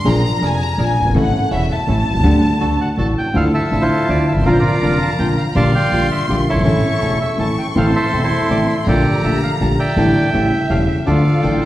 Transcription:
0.04 upright bass A#1, grand piano A#1 A#2 F3 A#3 D4 G#4, bandoneon D4 G#4 A#4, violin section A#5
0.41 upright bass F1, grand piano F1 F2, bandoneon D4 G#4 A#4
0.45 violin section G#5
0.62 violin section A#5
0.78 upright bass A#1, grand piano A#1 A#2, bandoneon D4 G#4 A#4, violin section G#5
1.00 upright bass F#1, grand piano F#1
1.05 upright bass G1, grand piano G1
1.10 upright bass G#1, grand piano G#1
1.14 upright bass A1, grand piano A1 A2 E3 A3 C#4 A4, bandoneon C#4 E4 A4, violin section F#5
1.51 grand piano E1 E2, upright bass E1, bandoneon C#4 E4 A4, violin section E5
1.71 violin section A5
1.87 grand piano A1 A2, upright bass A1, bandoneon C#4 E4 A4
2.10 grand piano B1, upright bass B1
2.14 grand piano C2, upright bass C2
2.19 grand piano C#2, upright bass C#2
2.23 grand piano D2 D3 G3 A3 D4 A4, upright bass D2, bandoneon D4 G4 A4
2.60 upright bass D2, grand piano D2 D3, bandoneon D4 F#4 A4
2.81 bandoneon F#5
2.97 upright bass A1, grand piano A1 A2, bandoneon D4 F#4 A4 A5
3.18 bandoneon G5
3.33 grand piano D2 D3 F3 A3 E4, upright bass D2, bandoneon D4 E4 F4 A4 F5, violin section A5
3.54 bandoneon A4 E5
3.71 upright bass A1, grand piano A1 A2 D3 F3 A3 E4, bandoneon D4 E4 F4
3.81 bandoneon E4 F4 C5
4.08 grand piano D2 D3 F3 A3 E4, upright bass D2, bandoneon D4 E4 F4 D5
4.28 grand piano G1, bandoneon E5
4.32 upright bass G1 G#1
4.37 grand piano G#1, violin section C6
4.41 grand piano A1, upright bass A1, violin section A#5
4.45 upright bass A#1, grand piano A#1 A#2 D3 F3 A#3 F4, bandoneon A#3 D4 F4 A#4 D5
4.52 bandoneon C5
4.59 bandoneon F4 A#4 D5
4.82 upright bass F1, grand piano F1 F2 D3 F3 A#3 F4, bandoneon A#3 D4 F4
5.02 bandoneon A5
5.19 upright bass A#1, grand piano A#1 A#2 D3 F3 A#3 F4, bandoneon A#3 D4 F4 G5
5.37 bandoneon F5
5.55 upright bass A#1, grand piano A#1 A#2 D3 G3 A#3 F4, bandoneon A#3 F4 G4 D5 F5 A5, violin section C6
5.75 bandoneon D5 G5
5.92 upright bass A#1, grand piano A#1 A#2 D3 G3 A#3 F4, bandoneon A#3 F4 G4
6.12 bandoneon E5
6.28 upright bass A#1, grand piano A#1 A#2 D3 G3 A#3 F4, bandoneon A#3 F4 G4 D5
6.49 upright bass F#1, grand piano F#1, bandoneon E4 A4 C#5
6.56 upright bass G1, grand piano G1
6.60 upright bass G#1, grand piano G#1, violin section C#6
6.64 grand piano A1 A2 E3 A3 C#4 A4, upright bass A1, bandoneon C#4 E4 A4
7.01 upright bass E1, grand piano E1 E2 E3 A3 C#4 A4, bandoneon C#4 E4 A4
7.21 bandoneon E5
7.38 grand piano A1 A2 E3 A3 C#4 A4, upright bass A1, bandoneon C#4 E4 A4 A5, violin section C#6
7.58 bandoneon G5
7.75 grand piano A1 A2 E3 A3 C4 A4, upright bass A1, bandoneon C4 E4 A4 C5 F5, violin section C6
7.96 bandoneon A4 C5 E5
8.12 upright bass E1, grand piano E1 E2 E3 A3 C4 A4, bandoneon C4 E4 A4
8.23 bandoneon E4 A4 C5
8.49 upright bass A1, grand piano A1 A2 E3 A3 C4 A4, bandoneon C4 E4 A4 D5
8.68 bandoneon E5
8.86 grand piano A#1 A#2 D3 A3 A#3 G4, upright bass A#1, bandoneon A#3 G4 A4 D5, violin section A#5
9.23 upright bass A#1, grand piano A#1 A#2 D3 A3 A#3 G4, bandoneon A#3 G4 A4 E5
9.43 bandoneon F5
9.60 upright bass A#1, grand piano A#1 A#2 D3 A3 A#3 G4, bandoneon A#3 G4 A4 A5
9.79 bandoneon D5 E5 G5
9.96 upright bass A1, grand piano A1 A2 D3 G3 A3 E4, bandoneon D4 G4 A4, violin section G5
10.33 upright bass A1, grand piano A1 A2 C#3 G3 A3 E4, bandoneon C#4 G4 A4, violin section E5
10.69 grand piano E1 E2 C#3 G3 A3 E4, upright bass E1, bandoneon C#4 G4 A4 F5
10.88 bandoneon E5
11.06 grand piano D2 D3 F3 A3 F4, upright bass D2, bandoneon D4 F4 A4 D5, violin section F5
11.42 grand piano A1 A2 D3 F3 A3 F4, upright bass A1, bandoneon D4 F4 A4, violin section G5
11.62 violin section A5 A#5

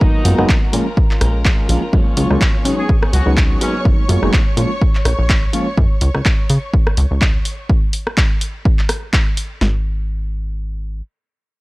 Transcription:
Already playing: string section A#4 A#5
0.00 analog synth bass G#1, clean electric guitar F#3 B3 D#4 F#4, reed electric piano F#3 G#3 A#3 B3 D#4, horn section D#4, kick
0.24 analog synth bass F#2, clean electric guitar F#3 B3 D#4 F#4, reed electric piano F#3 G#3 A#3 B3 F4, open hi-hat
0.38 analog synth bass F#1, reed electric piano F#3 G#3 A#3 B3 D#4, clean electric guitar B3 D#4 F#4, cross-stick
0.49 clean electric guitar F#3 F#4, kick, clap
0.62 clean electric guitar B3 D#4 F#4
0.73 analog synth bass A#2, reed electric piano F3 G#3 A#3 C#4 F4, clean electric guitar G#3 C#4 F4, open hi-hat
0.86 clean electric guitar C#4 F4
0.97 kick
1.10 clean electric guitar C#4 F4, clap
1.21 analog synth bass A#1, clean electric guitar G#3 C#4 F4, cross-stick, open hi-hat
1.45 analog synth bass G#1, clean electric guitar G#3 C#4 F4, kick, clap
1.69 analog synth bass A#1, reed electric piano F3 G#3 A#3 C#4 F4, clean electric guitar G#3 C#4 F4, open hi-hat
1.82 clean electric guitar C#4 F4
1.93 analog synth bass F#2, clean electric guitar F3 A#3 C#4 F4, reed electric piano F#3 G#3 A#3 C#4 F4, string section C#5 C#6, kick
2.17 analog synth bass C#2, clean electric guitar F3 A#3 C#4 F4, reed electric piano F#3 G#3 A#3 C#4 F4, open hi-hat
2.30 analog synth bass C#2, reed electric piano F#3 G#3 A#3 C#4 F4, clean electric guitar A#3 C#4 F4, cross-stick
2.41 clean electric guitar F3 A#3 C#4 F4, kick, clap
2.54 clean electric guitar A#3 C#4 F4
2.65 analog synth bass C#3, clean electric guitar F#3 B3 C#4 G#4, reed electric piano F#3 G#3 B3 C#4 D#4, open hi-hat
2.78 clean electric guitar B3 C#4 G#4, horn section G#4
2.89 kick
3.02 clean electric guitar B3 C#4 G#4, cross-stick
3.12 analog synth bass C#2, clean electric guitar F#3 B3 C#4 G#4, horn section F#4, open hi-hat
3.26 analog synth bass C#2, reed electric piano F#3 G#3 B3 C#4 D#4
3.37 clean electric guitar F#3 B3 G#4, kick, clap
3.60 clean electric guitar F#3 B3 D#4 G#4, reed electric piano F#3 G#3 A#3 B3 D#4, horn section C#4, open hi-hat
3.85 analog synth bass G#1, reed electric piano F#3 G#3 A#3 B3 D#4, kick
4.09 analog synth bass F#2, reed electric piano F#3 G#3 A#3 B3 F4, open hi-hat
4.22 analog synth bass F#1, reed electric piano F#3 G#3 A#3 B3 D#4, cross-stick
4.33 kick, clap
4.57 analog synth bass A#2, reed electric piano F3 G#3 A#3 C#4 F4, open hi-hat
4.81 kick
4.95 clap
5.05 analog synth bass A#1, cross-stick, open hi-hat
5.19 analog synth bass A#1
5.30 kick, clap
5.53 reed electric piano F3 G#3 A#3 C#4 F4, open hi-hat
5.77 analog synth bass F#2, kick
6.01 analog synth bass C#2, open hi-hat
6.14 analog synth bass C#2, cross-stick
6.25 kick, clap
6.49 analog synth bass C#3, open hi-hat
6.73 kick
6.87 cross-stick
6.97 analog synth bass C#2, open hi-hat
7.11 analog synth bass C#2
7.21 kick, clap
7.45 open hi-hat
7.69 kick
7.93 open hi-hat
8.07 cross-stick
8.17 kick, clap
8.41 open hi-hat
8.65 kick
8.79 clap
8.89 cross-stick, open hi-hat
9.13 kick, clap
9.37 open hi-hat
9.61 analog synth bass G#1, snare

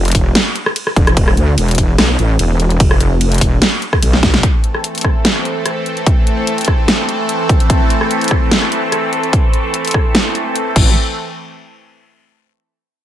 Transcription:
Already playing: wobble bass F1
0.05 closed hi-hat
0.08 closed hi-hat
0.12 wobble bass E1, kick, closed hi-hat, open hi-hat
0.35 snare, closed hi-hat, ride
0.56 closed hi-hat
0.66 cross-stick
0.76 closed hi-hat, ride
0.87 cross-stick
0.96 wobble bass E1, kick, closed hi-hat
1.07 cross-stick, closed hi-hat
1.17 wobble bass E1, kick, closed hi-hat, ride
1.28 cross-stick
1.37 wobble bass D2, closed hi-hat
1.58 wobble bass E1, closed hi-hat, ride
1.68 closed hi-hat
1.71 closed hi-hat
1.75 kick, closed hi-hat, open hi-hat
1.98 wobble bass B1, cross-stick, snare, closed hi-hat, ride
2.19 wobble bass A1, closed hi-hat
2.39 wobble bass E1, closed hi-hat, ride
2.60 closed hi-hat
2.70 closed hi-hat
2.80 wobble bass F1, kick, closed hi-hat, ride
2.91 cross-stick
3.01 closed hi-hat
3.21 closed hi-hat, ride
3.32 closed hi-hat
3.34 closed hi-hat
3.38 wobble bass E1, kick, closed hi-hat, open hi-hat
3.62 snare, closed hi-hat, ride
3.82 closed hi-hat
3.93 kick, cross-stick
4.03 wobble bass B1, closed hi-hat, ride
4.13 snare
4.23 kick, snare, closed hi-hat
4.34 snare, closed hi-hat
4.43 supersaw synth E3 A3 C4 A4, kick, closed hi-hat
4.64 closed hi-hat
4.75 cross-stick
4.84 closed hi-hat
4.95 closed hi-hat
4.98 closed hi-hat
5.01 kick, cross-stick, closed hi-hat
5.25 snare, closed hi-hat
5.36 cross-stick
5.45 closed hi-hat
5.66 cross-stick, closed hi-hat
5.86 closed hi-hat
5.97 closed hi-hat
6.06 kick, closed hi-hat
6.27 closed hi-hat
6.47 closed hi-hat
6.58 closed hi-hat
6.61 closed hi-hat
6.65 kick, cross-stick, closed hi-hat
6.88 snare, closed hi-hat
7.09 closed hi-hat
7.29 closed hi-hat
7.49 kick, closed hi-hat
7.60 closed hi-hat
7.70 kick, closed hi-hat
7.90 closed hi-hat
8.01 cross-stick
8.11 closed hi-hat
8.21 closed hi-hat
8.24 closed hi-hat
8.28 kick, cross-stick, closed hi-hat
8.51 snare, closed hi-hat
8.62 cross-stick
8.72 closed hi-hat
8.92 cross-stick, closed hi-hat
9.13 closed hi-hat
9.23 closed hi-hat
9.33 kick, closed hi-hat
9.53 closed hi-hat
9.74 closed hi-hat
9.85 closed hi-hat
9.88 closed hi-hat
9.91 kick, cross-stick, closed hi-hat
10.15 snare, closed hi-hat
10.35 closed hi-hat
10.55 closed hi-hat
10.76 wobble bass A1, supersaw synth E3 A3 C4 A4, kick, crash

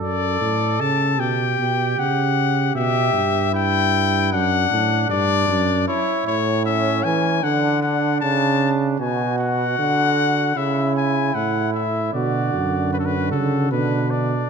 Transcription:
Already playing: trumpet A4
0.01 bass trombone F#2, trumpet D5
0.41 bass trombone A2
0.80 bass trombone C#3, trumpet A5
1.19 bass trombone B2, trumpet G4 G5
1.59 bass trombone B2
1.98 bass trombone C#3, trumpet F#5
2.75 bass trombone B2, trumpet G4 E5
3.14 bass trombone G2
3.53 trumpet E4 G5
4.32 bass trombone F#2, trumpet D4 F#5
4.70 bass trombone A2
5.09 bass trombone G2, trumpet D5
5.48 bass trombone F#2
5.87 trumpet E4 C#5
6.26 trombone A2, trumpet C#5
6.65 trumpet C#4 E5
7.04 trombone E3, trumpet G#5
7.42 trombone D3, trumpet D4 F#5
7.82 trumpet F#5
8.21 trombone C#3, trumpet A5
9.00 trombone B2, trumpet F#4 G#5
9.39 trumpet F#5
9.79 trombone D3
10.55 trombone C#3, trumpet E4 E5
10.96 trumpet G#5
11.35 trombone A2, trumpet F#5
11.74 trumpet E5
12.13 bass trombone B2, trombone D3, trumpet F#4 D5
12.54 bass trombone F#2
12.93 trumpet F#4 B4
12.99 trumpet A4
13.06 trumpet B4
13.32 bass trombone C#3, trumpet A4
13.71 bass trombone B2, trombone D3, trumpet D4 B4
14.11 trumpet D5

